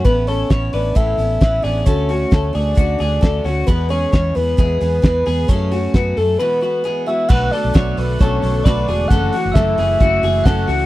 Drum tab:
CC |--------|--------|--------|--------|
HH |xoxoxoxo|xoxoxoxo|xoxoxoxo|xoxo----|
SD |--o---o-|--o---o-|--o---o-|--o-----|
BD |o-o-o-o-|o-o-o-o-|o-o-o-o-|o-o-----|

CC |x-------|--------|
HH |-oxoxoxo|xoxoxoxo|
SD |--o---o-|--o---o-|
BD |o-o-o-o-|o-o-o-o-|